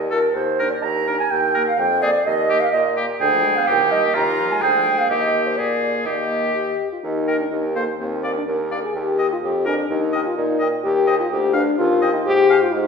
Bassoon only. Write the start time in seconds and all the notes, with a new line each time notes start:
Already playing: D#2
0.35 D#2
0.83 D#2
1.32 D#2
1.78 F2
2.26 D#2
2.73 A#2
3.20 D2
3.68 D#2
4.16 D#2
4.63 D2
5.10 D#2
5.57 A#2
6.06 D#2
7.04 D#2
7.52 D#2
8.00 D#2
8.47 D#2
8.95 D#2
9.43 F2
9.90 D#2
10.37 A#2
10.85 D#2
11.32 D2
11.80 D#2
12.27 G#2
12.75 G#2